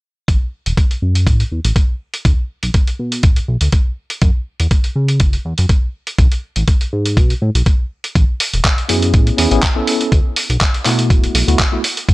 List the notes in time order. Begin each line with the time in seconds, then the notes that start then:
0.28 A1, kick, closed hi-hat
0.66 E1, closed hi-hat
0.77 kick, closed hi-hat
0.91 closed hi-hat
1.02 F#2
1.15 closed hi-hat
1.27 A2, kick, closed hi-hat
1.40 closed hi-hat
1.52 E2
1.65 A1, closed hi-hat
1.76 kick, closed hi-hat
2.14 closed hi-hat
2.25 D2, kick, closed hi-hat
2.63 B1, closed hi-hat
2.74 kick, closed hi-hat
2.87 closed hi-hat
2.99 B2
3.12 closed hi-hat
3.23 D1, kick, closed hi-hat
3.36 closed hi-hat
3.48 B1
3.61 D2, closed hi-hat
3.72 kick, closed hi-hat
4.10 closed hi-hat
4.22 F#2, kick, closed hi-hat
4.60 E2, closed hi-hat
4.71 kick, closed hi-hat
4.84 closed hi-hat
4.96 C#3
5.08 closed hi-hat
5.20 F#1, kick, closed hi-hat
5.33 closed hi-hat
5.45 E2
5.58 F#2, closed hi-hat
5.69 kick, closed hi-hat
6.07 closed hi-hat
6.18 B1, kick, closed hi-hat
6.32 closed hi-hat
6.56 A1, closed hi-hat
6.68 kick, closed hi-hat
6.81 closed hi-hat
6.93 G#2
7.06 closed hi-hat
7.17 B2, kick, closed hi-hat
7.30 closed hi-hat
7.42 A2
7.55 B1, closed hi-hat
7.66 kick, closed hi-hat
8.04 closed hi-hat
8.15 A1, kick, closed hi-hat
8.40 open hi-hat
8.53 E1, closed hi-hat
8.65 kick, clap, closed hi-hat
8.78 closed hi-hat
8.89 F#2 B3 C#4 E4 G#4, open hi-hat
9.02 closed hi-hat
9.14 A2, kick, closed hi-hat
9.27 closed hi-hat
9.37 E2 B3 C#4 E4 G#4, open hi-hat
9.51 A1 B3 C#4 E4 G#4, closed hi-hat
9.63 kick, clap, closed hi-hat
9.76 B3 C#4 E4 A4
9.87 open hi-hat
10.01 closed hi-hat
10.12 D2, kick, closed hi-hat
10.36 open hi-hat
10.50 B1, closed hi-hat
10.61 kick, clap, closed hi-hat
10.74 closed hi-hat
10.85 B2 A3 B3 E4 F#4, clap, open hi-hat
10.99 closed hi-hat
11.10 D1, kick, closed hi-hat
11.24 closed hi-hat
11.35 B1, open hi-hat
11.47 D2 A3 B3 E4 F#4, closed hi-hat
11.59 kick, clap, closed hi-hat
11.72 A3 B3 E4 F#4
11.84 open hi-hat
11.97 closed hi-hat
12.09 F#2, kick, closed hi-hat